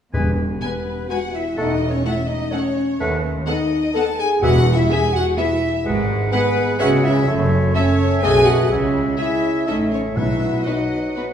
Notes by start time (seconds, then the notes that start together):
0.13 E1 E2 G#3 B4 G#5
0.61 G#3 B3 B4 G#5
1.09 G#3 F#4 B4 F#5 G#5
1.33 E4 E5
1.57 E1 E2 A3 D#4 A4 D#5 F#5
1.89 C#4 C#5
2.04 A3 E4 A4 E5 F#5
2.28 D#4 D#5
2.51 A3 C#4 A4 C#5 F#5
3.00 D#2 A3 B4 F#5
3.46 B3 D#4 A4 D#5 F#5
3.94 B3 A4 F#5 A5
4.18 G#4 G#5
4.42 E1 E2 G#3 F#4 B4 E5 F#5
4.73 E4 E5
4.90 B3 G#4 E5 G#5
5.13 F#4 F#5
5.37 B3 E4 G#4 E5
5.85 G#1 G#2 G#3 B4 F#5
6.32 G#3 B3 G#4 B4 F#5
6.79 C#2 C#3 G#3 C#4 F#4 G#4 C#5 E5 F#5
7.04 E4 E5
7.27 F#1 F#2 A3 C#5 E5
7.74 A3 C#4 A4 C#5 E5
8.22 B1 B2 A3 B3 G#4 A4 B4 D#5 G#5
8.46 F#4 F#5
8.70 C#2 C#3 G#3 C#5 E5
9.18 G#3 E4 G#4 C#5 E5
9.66 A1 A2 A3 C#4 D#4 A4 C#5 D#5 E5
9.91 C#4 C#5
10.16 B1 B2 F#3 E4 B4 E5 F#5
10.66 F#3 B3 D#4 F#4 B4 D#5 F#5
11.15 B3 F#4 B4